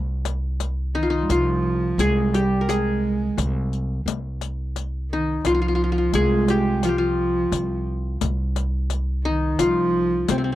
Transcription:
Already playing: upright bass C2
0.25 riq
0.60 riq
0.94 cello D#3, qanun D#4
1.03 qanun F4
1.08 cello D#3, qanun D#4
1.22 cello G3
1.29 upright bass C2, cello F3, qanun F4, riq
1.98 upright bass C2, cello G#3, qanun G#4, riq
2.33 cello G3, qanun G4, riq
2.61 qanun A#4
2.67 cello G#3, qanun G#4, riq
3.37 upright bass C2, riq
3.73 riq
4.06 upright bass C2, riq
4.41 riq
4.76 riq
5.11 cello D#3, qanun D#4
5.45 upright bass C2, cello F3, qanun F4, riq
5.55 qanun F4
5.62 qanun F4
5.68 qanun F4
5.75 qanun F4
5.84 qanun F4
5.92 qanun F4
5.98 qanun F4
6.13 upright bass C2, cello G#3, qanun G#4, riq
6.48 qanun G4, riq
6.83 cello F3, qanun F4, riq
6.89 qanun G4
6.96 cello F3, qanun F4
7.52 upright bass C2, riq
8.21 upright bass C2, riq
8.56 riq
8.90 riq
9.24 cello D#3, qanun D#4
9.59 upright bass C2, cello F3, qanun F4, riq
10.28 upright bass C2, cello C3, qanun C4, riq
10.38 qanun C4
10.44 qanun C4

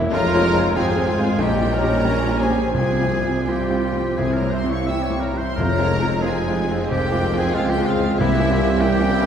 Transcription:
Already playing: tuba E1, double bass section E1, cello section E2, grand piano G2 A#3 C#4 E4, bassoon E4
0.10 tuba F1, double bass section F1, grand piano F2, cello section F2, viola section G#3 F4, bassoon F4, violin section A#4 A#5, oboe A#4, flute section C#5
0.15 french horn section G#3 F4
0.34 grand piano G#3 C4 F4
0.53 grand piano G#3 C4 F4
0.76 double bass section G#1, tuba G#1, cello section G#2, grand piano G#3 C4 F4, viola section G#3 F4, bassoon G4, violin section G#4 G#5, oboe G#4, flute section C5
0.96 grand piano G#3 C4 F4
1.10 bassoon F4
1.19 grand piano G#3 C4 F4
1.38 grand piano A#1, double bass section A#1, tuba A#1, cello section A#2, viola section G3 C#4, french horn section C#4 G4, bassoon D#4, oboe G4, flute section A#4, violin section G5
1.43 violin section G4
1.61 grand piano G3 C#4 G4
1.74 oboe A#4, violin section A#4 A#5, flute section C#5
1.84 grand piano G3 C#4 G4
2.04 grand piano G3 C#4 G4, bassoon C#4
2.28 grand piano G3 C#4 G4
2.40 bassoon C#4, violin section G#4 G#5, oboe G#4, flute section C5
2.50 grand piano G3 C#4 G4
2.74 grand piano C2, tuba C2, double bass section C2, cello section C3, timpani C3, viola section F3 C4, french horn section C4 F4, bassoon C4, oboe G#4, violin section G#4 G#5, flute section C5
2.99 grand piano G3 C4 F4
3.23 grand piano G3 C4 F4
3.46 viola section F3 C4, grand piano G3 C4 F4, bassoon F4, oboe G4, violin section G4 G5, flute section C5
3.70 grand piano G3 C4 F4
3.92 grand piano G3 C4 F4
4.17 tuba C2, grand piano C2, double bass section C2, cello section C3, timpani C3, viola section E3 C4, french horn section C4 E4, bassoon E4, oboe G#4, violin section G#4 G#5, flute section C5
4.33 oboe A#4, flute section C#5, violin section A#5
4.38 violin section A#4
4.42 grand piano G3 C4 E4
4.50 oboe C5, violin section C5, flute section E5
4.55 violin section C6
4.64 grand piano G3 C4 E4
4.69 oboe C#5, violin section C#5 C#6, flute section F5
4.85 grand piano G3 C4 E4, oboe E5, violin section E5 E6, flute section G5
4.90 bassoon C4
5.02 oboe C#5, violin section C#5, flute section F5
5.07 grand piano G3 C4 E4, violin section C#6
5.20 oboe A#4, violin section A#4 A#5, flute section C#5
5.33 grand piano G3 C4 E4
5.38 oboe C5, violin section C5 C6, flute section E5
5.55 tuba F1, double bass section F1, cello section F2, grand piano F2, timpani F2, viola section F3 G#3, french horn section C4 F4, oboe A#4, violin section A#4 A#5, flute section C#5
5.79 grand piano G#3 C4 F4
6.00 grand piano G#3 C4 F4
6.22 grand piano G#3 C4 F4, viola section G#3 C4, oboe G#4, violin section G#4 G#5, flute section C5
6.48 grand piano G#3 C4 F4
6.71 grand piano G#3 C4 F4
6.90 grand piano C2, french horn section C4 F4, bassoon C4, oboe G4, violin section G4 G5, flute section A#4
7.11 grand piano G#3 C4 F4
7.33 grand piano G#3 C4 F4
7.38 violin section G#4 G#5, oboe G#4, flute section C5
7.52 tuba C#2, double bass section C#2, cello section C#2, grand piano G#3 C4 F4, viola section G#3, violin section F4 F5, oboe F4, flute section G#4
7.69 violin section G4 G5, oboe G4, flute section A#4
7.78 grand piano G#3 C4 F4
7.86 oboe F4, violin section F4 F5, flute section G#4
7.99 grand piano G#3 C4 F4
8.17 tuba C2, double bass section C2, grand piano C2, cello section C2, timpani C3, viola section E3 C4, french horn section A#3 E4, violin section E4 E5, oboe E4, bassoon E4, flute section G4
8.39 grand piano A#3 C#4 E4
8.50 viola section E4, bassoon F4
8.57 grand piano A#3 C#4 E4
8.77 grand piano A#3 C#4 E4, oboe G4, violin section G5
8.82 viola section E3 E4, violin section G4, bassoon G4, flute section A#4
9.00 grand piano A#3 C#4 E4
9.12 viola section G3, bassoon E4
9.21 grand piano A#3 C#4 E4

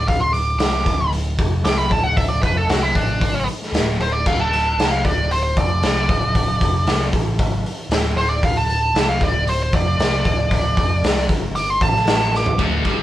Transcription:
0.08 picked electric bass D1, lead electric guitar F5, kick, open hi-hat
0.20 lead electric guitar C6
0.33 lead electric guitar D6, open hi-hat
0.58 picked electric bass C2, lead electric guitar D6, snare, open hi-hat
0.86 picked electric bass D1, kick, open hi-hat
1.12 open hi-hat
1.38 picked electric bass F1, kick, open hi-hat
1.64 picked electric bass C2, lead electric guitar D6, snare, open hi-hat
1.78 lead electric guitar B5
1.90 picked electric bass D1, lead electric guitar A5, kick, open hi-hat
2.03 lead electric guitar F#5
2.17 lead electric guitar E5, kick, open hi-hat
2.28 lead electric guitar D5
2.43 picked electric bass F1, lead electric guitar B4, kick, open hi-hat
2.57 lead electric guitar A4
2.68 picked electric bass C2, lead electric guitar F#4, snare, open hi-hat
2.83 lead electric guitar E4
2.95 picked electric bass A1, lead electric guitar D4, kick, open hi-hat
3.21 picked electric bass G#1, kick, open hi-hat
3.48 open hi-hat
3.62 snare
3.73 picked electric bass D1, snare, open hi-hat
4.00 picked electric bass D1, lead electric guitar C5, open hi-hat
4.12 lead electric guitar D5
4.26 picked electric bass D1, lead electric guitar F5, kick, crash
4.41 lead electric guitar A5
4.53 open hi-hat
4.77 picked electric bass C2, snare, open hi-hat
4.91 lead electric guitar F5
5.04 picked electric bass D1, lead electric guitar D5, kick, open hi-hat
5.31 lead electric guitar C5, open hi-hat
5.43 lead electric guitar C5
5.57 picked electric bass F1, lead electric guitar D5, kick, open hi-hat
5.83 picked electric bass C2, snare, open hi-hat
6.09 picked electric bass D1, kick, open hi-hat
6.35 kick, open hi-hat
6.61 picked electric bass F1, kick, open hi-hat
6.87 picked electric bass C2, snare, open hi-hat
7.13 picked electric bass A1, kick, open hi-hat
7.39 picked electric bass G#1, kick, open hi-hat
7.66 open hi-hat
7.90 picked electric bass D1, snare, open hi-hat
8.15 picked electric bass D1, lead electric guitar C5, open hi-hat
8.30 lead electric guitar D5
8.43 picked electric bass D1, lead electric guitar F5, kick, open hi-hat
8.57 lead electric guitar A5
8.69 open hi-hat
8.95 picked electric bass C2, snare, open hi-hat
9.09 lead electric guitar F5
9.20 picked electric bass D1, lead electric guitar D5, kick, open hi-hat
9.47 lead electric guitar C5, open hi-hat
9.63 lead electric guitar C5
9.73 picked electric bass F1, lead electric guitar D5, kick, open hi-hat
9.98 picked electric bass C2, snare, open hi-hat
10.25 picked electric bass D1, kick, open hi-hat
10.51 kick, open hi-hat
10.77 picked electric bass F1, kick, open hi-hat
11.02 picked electric bass C2, snare, open hi-hat
11.29 picked electric bass G1, kick, open hi-hat
11.55 lead electric guitar D6, open hi-hat
11.70 lead electric guitar C6
11.81 picked electric bass A1, lead electric guitar A5, kick, open hi-hat
11.96 snare
12.07 snare, open hi-hat
12.35 lead electric guitar D6, snare
12.46 floor tom
12.59 picked electric bass D1, distorted electric guitar D2 D3, kick, ride
12.85 picked electric bass G1, distorted electric guitar G2 G3, kick, snare, ride

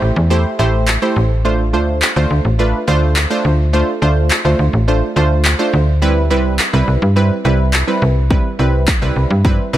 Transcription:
Already playing: synth pluck A3 E4 G4 C5, downlifter
0.02 fm bass A1
0.16 fm bass E2
0.30 synth pluck A3 E4 G4 C5
0.59 fm bass A1, synth pluck A3 E4 G4 C5
0.88 clap
1.02 synth pluck A3 E4 G4 C5
1.16 fm bass A1
1.45 synth pluck A3 D4 F4 C5
1.73 fm bass D2, synth pluck A3 D4 F4 C5
2.02 clap
2.16 fm bass D2, synth pluck A3 D4 F4 C5
2.31 fm bass D2
2.45 fm bass A1
2.59 synth pluck A3 D4 F4 B4
2.87 fm bass D2, synth pluck A3 D4 F4 C5
3.16 clap
3.30 synth pluck A3 D4 F4 C5
3.45 fm bass D2
3.73 synth pluck A3 D4 F4 C5
4.02 fm bass D2, synth pluck A3 D4 F4 C5
4.31 clap
4.45 fm bass D2, synth pluck A3 D4 F4 C5
4.59 fm bass D2
4.73 fm bass A1
4.88 synth pluck A3 D4 F4 C5
5.16 fm bass D2, synth pluck A3 D4 F4 C5
5.45 clap
5.59 synth pluck A3 D4 F4 C5
5.73 fm bass D2
6.02 synth pluck G3 C4 E4 B4
6.30 fm bass C2, synth pluck G3 C4 E4 B4
6.59 clap
6.73 fm bass C2, synth pluck G3 C4 E4 B4
6.88 fm bass C2
7.02 fm bass G2
7.16 synth pluck G3 C4 E4 B4
7.44 fm bass C2, synth pluck G3 C4 E4 B4
7.73 clap
7.87 synth pluck G3 C4 E4 B4
8.02 fm bass C2
8.30 synth pluck G3 C4 E4 B4, kick
8.59 fm bass C2, synth pluck G3 C4 E4 B4
8.88 kick, clap
9.02 fm bass C2, synth pluck G3 C4 E4 B4
9.16 fm bass C2
9.30 fm bass G2
9.45 synth pluck G3 C4 E4 B4, kick
9.73 fm bass C2, synth pluck G3 C4 E4 B4

